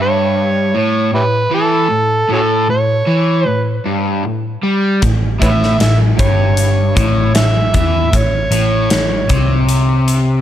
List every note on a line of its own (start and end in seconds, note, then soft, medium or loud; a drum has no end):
0.00 0.74 G2 medium
0.00 0.74 C#5 medium
0.75 1.12 A2 medium
0.75 1.13 C#5 medium
1.13 1.45 A2 medium
1.13 1.22 E4 medium
1.13 1.23 G4 medium
1.13 1.51 B4 medium
1.51 1.90 E3 medium
1.51 2.28 A4 loud
1.90 2.23 A2 medium
2.29 2.68 A2 loud
2.29 2.40 C#4 medium
2.29 2.40 F#4 medium
2.29 2.68 A4 medium
2.70 3.01 A2 medium
2.70 3.48 C#5 medium
3.07 3.46 E3 medium
3.47 3.79 A2 medium
3.47 3.83 B4 medium
3.86 4.24 G2 medium
4.24 4.56 A2 medium
4.63 5.02 G3 medium
5.02 5.39 A1 medium
5.02 5.34 A2 medium
5.02 kick medium
5.02 closed hi-hat medium
5.40 5.78 A1 medium
5.40 5.78 A2 medium
5.40 5.48 B4 medium
5.40 5.50 C#5 medium
5.40 5.78 E5 loud
5.40 kick medium
5.40 closed hi-hat medium
5.63 snare soft
5.79 6.17 A1 medium
5.79 6.11 A2 medium
5.79 5.97 E5 medium
5.79 snare loud
5.79 closed hi-hat medium
6.17 6.93 G1 medium
6.17 6.95 G2 medium
6.17 6.93 C#5 medium
6.17 kick medium
6.17 closed hi-hat medium
6.57 closed hi-hat medium
6.95 7.33 A1 medium
6.95 7.34 A2 medium
6.95 7.38 C#5 medium
6.95 kick loud
6.95 closed hi-hat medium
7.35 7.72 A1 medium
7.35 7.66 A2 medium
7.35 7.75 E5 medium
7.35 snare loud
7.35 closed hi-hat medium
7.74 8.11 E2 medium
7.74 8.11 E3 medium
7.74 8.19 E5 medium
7.74 kick medium
7.74 closed hi-hat medium
8.12 8.50 A1 medium
8.12 8.44 A2 medium
8.12 kick medium
8.12 closed hi-hat medium
8.17 9.70 C#5 medium
8.51 8.88 A1 medium
8.51 8.90 A2 medium
8.51 closed hi-hat medium
8.90 9.27 A1 medium
8.90 9.22 A2 medium
8.90 snare loud
8.90 closed hi-hat medium
9.29 10.41 C2 medium
9.29 10.41 C3 medium
9.29 kick medium
9.29 closed hi-hat medium
9.69 closed hi-hat medium
10.08 closed hi-hat medium